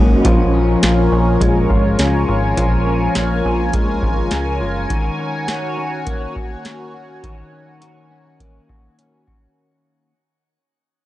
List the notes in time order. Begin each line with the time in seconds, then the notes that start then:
Already playing: G#1 G#2 C#3 D#3 F#3 G#3 A#3 C#4 D#4 F#4 A#4
0.24 A#1 F3 F4 A#4 C#5 G#5, kick, closed hi-hat
0.54 C#4
0.83 A#1 F4, snare, closed hi-hat
1.12 A#1 C#4
1.40 A#1 G#3, kick, closed hi-hat
1.70 G#1 F4, kick
1.99 C#2 C#4, snare, closed hi-hat
2.29 G#1 F4
2.57 A#1 F3 F4, kick, closed hi-hat
2.87 C#4
3.15 A#1 F4, snare, closed hi-hat
3.45 A#1 C#4
3.73 A#1 G#3, kick, closed hi-hat
4.03 G#1 F4, kick
4.31 C#2 C#4, snare, closed hi-hat
4.61 F#1 F4
4.89 D#3 F#4 C#5, kick, closed hi-hat
5.19 C#4
5.48 F#4, snare, closed hi-hat
5.77 C#4
6.07 A#3, kick, closed hi-hat
6.36 F#4, kick
6.64 C#4, snare, closed hi-hat
6.94 F#4
7.24 D#3 F#4, kick, closed hi-hat
7.52 C#4
7.81 F#4, closed hi-hat
8.11 C#4
8.40 A#3, kick, closed hi-hat
8.69 F#4, kick
8.98 C#4, closed hi-hat
9.27 F#4, kick